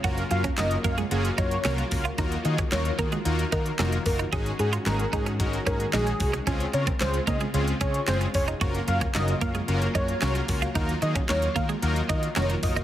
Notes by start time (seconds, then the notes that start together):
Already playing: C#3
0.04 F#1 F#3 A#3 C#4 F4 F#4 A#4, kick, closed hi-hat
0.18 closed hi-hat
0.30 F#2 A#3 C#4 F4 F#4 A#4 F5, muted clean electric guitar stroke, closed hi-hat
0.44 C#4, kick, closed hi-hat
0.57 F#1 A#3 C#4 F4 F#4 A#4 D#5, muted clean electric guitar stroke, snare, clap, closed hi-hat
0.71 closed hi-hat
0.84 F#2 A#3 C#4 F4 F#4 C#5 F5, kick, closed hi-hat
0.98 G#3, closed hi-hat
1.11 F#1 A#3 C#4 F4 F#4 G#4, closed hi-hat
1.25 closed hi-hat
1.38 F#2 A#3 C#4 D#4 F4 F#4 A#4 C#5, kick, closed hi-hat
1.51 closed hi-hat
1.64 C2 A#3 C#4 F4 F#4 A#4, snare, clap, closed hi-hat
1.78 muted clean electric guitar stroke, closed hi-hat
1.91 C#2 A#3 C#4 F4 F#4 A#4, kick, open hi-hat
2.05 F4, closed hi-hat
2.18 D#2 D#3 A#3 D#4 F4 F#4 A#4, kick, closed hi-hat
2.32 closed hi-hat
2.45 D#3 A#3 D#4 F4 F#4 G#4 D#5, muted clean electric guitar stroke, closed hi-hat
2.58 C#4, kick, closed hi-hat
2.71 D#2 A#3 D#4 F4 F#4 A#4 C#5, muted clean electric guitar stroke, snare, clap, closed hi-hat
2.85 closed hi-hat
2.98 D#3 A#3 D#4 F4 F#4 G#4 A#4, kick, closed hi-hat
3.12 G#3, closed hi-hat
3.25 D#2 A#3 D#4 F4 F#4 A#4, closed hi-hat
3.39 closed hi-hat
3.52 D#3 A#3 D#4 F4 F#4 A#4, kick, closed hi-hat
3.66 closed hi-hat
3.79 F1 A#3 C#4 D#4 F4 F#4 A#4, snare, clap, closed hi-hat
3.92 muted clean electric guitar stroke, closed hi-hat
4.06 F#1 A#3 D#4 F4 F#4 A#4, kick, open hi-hat
4.19 D#4, closed hi-hat
4.32 G#1 D#3 G#3 C#4 D#4 F#4 G#4, kick, closed hi-hat
4.46 closed hi-hat
4.59 G#2 G#3 C#4 D#4 F#4 G#4, muted clean electric guitar stroke, closed hi-hat
4.73 F4, closed hi-hat
4.86 G#1 G#3 C#4 D#4 F#4 G#4 A#4, muted clean electric guitar stroke, snare, clap, closed hi-hat
4.99 closed hi-hat
5.13 G#2 G#3 C#4 D#4 F#4 G#4, kick, closed hi-hat
5.26 C#4, closed hi-hat
5.39 G#1 G#3 C#4 D#4 F#4 A#4, kick, closed hi-hat
5.53 closed hi-hat
5.66 G#2 G#3 C#4 D#4 F#4 G#4 A#4, kick, closed hi-hat
5.80 closed hi-hat
5.93 A#1 G#3 C#4 D#4 F#4 G#4, snare, clap, closed hi-hat
6.07 muted clean electric guitar stroke, closed hi-hat
6.20 C2 G#3 C#4 D#4 F#4 G#4, kick, open hi-hat
6.33 C#4, closed hi-hat
6.47 C#2 C#3 G#3 C4 C#4 F4 G#4, kick, closed hi-hat
6.60 closed hi-hat
6.73 C#3 G#3 C4 C#4 F4 A#4 C#5, muted clean electric guitar stroke, closed hi-hat
6.87 C4, kick, closed hi-hat
7.00 C#2 G#3 C4 C#4 F4 G#4 C5, muted clean electric guitar stroke, snare, clap, closed hi-hat
7.14 closed hi-hat
7.27 C#3 G#3 A#3 C4 C#4 F4 G#4 D#5, kick, closed hi-hat
7.40 G#3, closed hi-hat
7.54 C#2 G#3 C4 C#4 F4 G#4, closed hi-hat
7.68 closed hi-hat
7.81 C#3 G#3 C4 C#4 F4 G#4 C#5, kick, closed hi-hat
7.94 closed hi-hat
8.07 F#1 G#3 C4 C#4 F4 G#4 C5, snare, clap, closed hi-hat
8.21 muted clean electric guitar stroke, closed hi-hat
8.34 F1 G#3 C4 C#4 F4 G#4 C#5, kick, open hi-hat
8.48 D#4, closed hi-hat
8.61 F#1 F#3 A#3 C#4 F4 F#4 A#4, kick, closed hi-hat
8.75 closed hi-hat
8.88 F#2 A#3 C#4 F4 F#4 A#4 F5, muted clean electric guitar stroke, closed hi-hat
9.01 C#4, kick, closed hi-hat
9.14 F#1 A#3 C#4 F4 F#4 A#4 D#5, muted clean electric guitar stroke, snare, clap, closed hi-hat
9.28 closed hi-hat
9.41 F#2 A#3 C#4 F4 F#4 A#4 F5, kick, closed hi-hat
9.55 G#3, closed hi-hat
9.68 F#1 A#3 C#4 F4 F#4 A#4, closed hi-hat
9.82 closed hi-hat
9.95 F#2 A#3 C#4 D#4 F4 F#4 A#4 C#5, kick, closed hi-hat
10.08 closed hi-hat
10.22 C2 A#3 C#4 F4 F#4 A#4, snare, clap, closed hi-hat
10.35 muted clean electric guitar stroke, closed hi-hat
10.48 C#2 A#3 C#4 F4 F#4 A#4, kick, open hi-hat
10.62 F4, closed hi-hat
10.75 D#2 D#3 A#3 D#4 F4 F#4 A#4, kick, closed hi-hat
10.89 closed hi-hat
11.02 D#3 A#3 D#4 F4 F#4 G#4 D#5, muted clean electric guitar stroke, closed hi-hat
11.15 C#4, kick, closed hi-hat
11.29 D#2 A#3 D#4 F4 F#4 A#4 C#5, muted clean electric guitar stroke, snare, clap, closed hi-hat
11.42 closed hi-hat
11.55 D#3 A#3 D#4 F4 F#4 A#4 F5, kick, closed hi-hat
11.69 G#3, closed hi-hat
11.82 D#2 A#3 D#4 F4 F#4 A#4, closed hi-hat
11.96 closed hi-hat
12.09 D#3 A#3 D#4 F4 F#4 A#4 D#5, kick, closed hi-hat
12.23 closed hi-hat
12.36 F1 A#3 C#4 D#4 F4 F#4 A#4 C#5, snare, clap, closed hi-hat
12.49 muted clean electric guitar stroke, closed hi-hat
12.63 F#1 A#3 D#4 F4 F#4 A#4 D#5, kick, open hi-hat
12.76 D#4, closed hi-hat